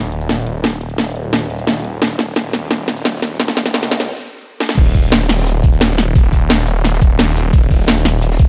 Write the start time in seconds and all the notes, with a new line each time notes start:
Already playing: D#1
0.03 closed hi-hat
0.12 D#1, closed hi-hat
0.21 shaker
0.29 snare, closed hi-hat, shaker
0.47 closed hi-hat
0.64 snare, closed hi-hat, shaker
0.72 shaker
0.81 closed hi-hat, shaker
0.90 closed hi-hat
0.98 D#1, snare, closed hi-hat, shaker
1.07 closed hi-hat
1.16 closed hi-hat
1.33 snare, closed hi-hat, shaker
1.41 closed hi-hat
1.50 D#1, closed hi-hat
1.59 shaker
1.67 snare, closed hi-hat, shaker
1.84 closed hi-hat
2.02 D#1, snare, closed hi-hat, shaker
2.10 shaker
2.19 snare, closed hi-hat, shaker
2.28 closed hi-hat
2.36 snare, closed hi-hat, shaker
2.45 closed hi-hat
2.53 D#1, snare, closed hi-hat
2.71 snare, closed hi-hat, shaker
2.79 closed hi-hat
2.88 D#1, snare, closed hi-hat
2.97 shaker
3.05 snare, closed hi-hat, shaker
3.22 snare, closed hi-hat
3.40 snare, closed hi-hat, shaker
3.48 snare, closed hi-hat, shaker
3.57 snare, closed hi-hat, shaker
3.66 snare, closed hi-hat
3.74 C#2, snare, closed hi-hat, shaker
3.83 snare, closed hi-hat
3.91 snare, closed hi-hat
4.00 snare
4.60 snare
4.69 snare
4.77 D#1, kick, closed hi-hat, crash
4.86 closed hi-hat
4.94 kick, closed hi-hat, open hi-hat, shaker
5.04 closed hi-hat
5.12 snare, closed hi-hat
5.21 closed hi-hat, shaker
5.29 D#1, snare, closed hi-hat, shaker
5.38 snare, closed hi-hat
5.42 snare, closed hi-hat
5.46 closed hi-hat
5.64 D#1, kick, closed hi-hat, shaker
5.72 closed hi-hat
5.81 snare, closed hi-hat
5.98 snare, closed hi-hat, shaker
6.15 kick, closed hi-hat
6.24 closed hi-hat
6.33 kick, closed hi-hat, shaker
6.41 closed hi-hat
6.49 D#1, snare, closed hi-hat
6.59 shaker
6.66 closed hi-hat, shaker
6.76 closed hi-hat
6.84 snare, closed hi-hat
6.93 snare
7.02 D#1, kick, closed hi-hat, shaker
7.10 closed hi-hat
7.19 snare, closed hi-hat
7.28 snare
7.36 snare, closed hi-hat, shaker
7.53 D#1, kick, closed hi-hat
7.63 closed hi-hat
7.71 kick, closed hi-hat, open hi-hat, shaker
7.79 closed hi-hat
7.87 snare, closed hi-hat
7.96 closed hi-hat, shaker
8.05 D#1, snare, closed hi-hat, shaker
8.14 closed hi-hat
8.22 closed hi-hat
8.31 snare
8.39 D#1, kick, closed hi-hat, shaker